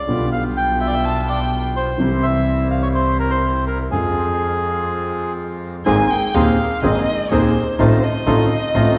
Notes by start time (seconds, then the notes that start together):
Already playing: D5
0.07 B1 B2 D3 G3 B3 F4
0.11 F4
0.32 F5
0.57 G5
0.81 E5 G5
0.87 D5
0.94 E5
1.05 A5
1.29 D5 G5
1.76 C5
1.98 C2 C3 E3 G3 C4 E4 G4
2.23 E5
2.71 F5
2.82 C#5
2.95 C5
3.19 A#4
3.30 C5
3.67 A#4
3.90 F2 F3 G#3 C4 F4 G#4
3.95 G#4
5.85 G#1 G#2 D#3 A#3 C4 G#4 G#5
6.10 G5
6.34 D#1 D#2 D#3 A#3 C4 G#4 F5
6.83 G#1 G#2 D#3 A#3 C4 G#4 D#5
7.31 D#1 D#2 D#3 A#3 C4 G#4 C5
7.78 A1 A2 D#3 A3 C4 D#4 F4 C5
8.03 D#5
8.26 A1 A2 D#3 A3 C4 D#4 F4
8.74 A1 A2 D#3 A3 C4 D#4 F4